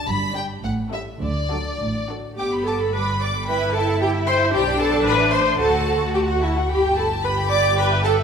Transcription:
0.07 G1 G2 B5
0.35 G3 D4 G4 D5 G5
0.63 A1 A2 F#5
0.92 G3 C#4 E4 A4 E5
1.22 D2 D3 D5
1.51 F#3 D4 F#4 A4
1.80 A1 A2
2.09 F#3 D4 F#4 A4
2.38 G1 B3 G4 G5 D6
2.53 B5
2.66 A4 A5 D6
2.81 B5
2.94 G3 B4 B5 D6
3.09 B5
3.21 D5 D6
3.35 B5
3.48 E4 B4 G5 B5
3.61 E5
3.75 A4 G5 A5
3.88 E5
4.01 G4 G5
4.14 E5
4.27 C5 G5 C6
4.40 E5
4.53 B1 D4 G4 B4 G5
4.66 D5
4.80 A4 B4 A5
4.92 D5
5.05 A1 B4 C5 B5
5.18 E5
5.32 C5 C6
5.46 E5
5.58 D2 F#4 A4 A5
5.73 F#5
5.87 A5
6.01 F#5
6.14 G4 G5 A5
6.27 F#4 F#5
6.41 E4 E5 A5
6.55 F#4 F#5
6.69 G1 G4 G5 B5
6.83 G5
6.97 A4 A5 B5
7.10 G5
7.23 G4 B4 B5
7.37 G5
7.50 D5 B5 D6
7.63 G5
7.77 B4 G5 B5
7.91 E5
8.04 A4 G5 A5
8.17 E5

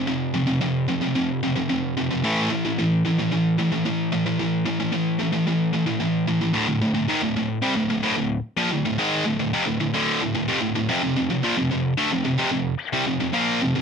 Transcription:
0.07 F2 C3
0.34 F2 C3
0.47 F2 C3
0.61 F2 C3
0.88 F2 C3
1.02 F2 C3
1.15 F2 C3
1.43 F2 C3
1.55 F2 C3
1.69 F2 C3
1.97 F2 C3
2.10 F2 C3
2.24 A2 E3 A3
2.50 A2 E3
2.65 A2 E3
2.79 A2 E3
3.05 A2 E3
3.18 A2 E3
3.31 A2 E3
3.58 A2 E3
3.72 A2 E3
3.85 A2 E3
4.12 A2 E3
4.26 A2 E3
4.39 A2 E3
4.66 A2 E3
4.79 A2 E3
4.92 A2 E3
5.19 A2 E3
5.32 A2 E3
5.47 A2 E3
5.73 A2 E3
5.86 A2 E3
6.00 A2 E3
6.28 A2 E3
6.41 A2 E3
6.53 D2 A2
6.68 D2 A2
6.81 D2 A2
6.94 D2 A2
7.08 G#2 D#3
7.22 D2 A2
7.36 D2 A2
7.62 C3 G3
7.76 D2 A2
7.89 D2 A2
8.03 D2 A2
8.16 D2 A2
8.57 A#2 F3
8.71 D2 A2
8.85 D2 A2
8.98 G#2 D#3 G#3
9.26 D2 A2
9.39 D2 A2
9.53 F2 C3
9.66 D2 A2
9.80 D2 A2
9.94 D2 A2 D3
10.21 D2 A2
10.35 D2 A2
10.48 F2 C3
10.61 D2 A2
10.75 D2 A2
10.89 F2 C3
11.03 F2 C3
11.16 F2 C3
11.30 F2 C3
11.43 A#2 F3
11.57 F2 C3
11.71 F2 C3
11.98 D3 A3
12.12 F2 C3
12.25 F2 C3
12.38 F2 C3
12.52 F2 C3
12.93 C3 G3
13.06 F2 C3
13.20 F2 C3
13.33 A#2 F3 A#3
13.62 F2 C3
13.75 F2 C3

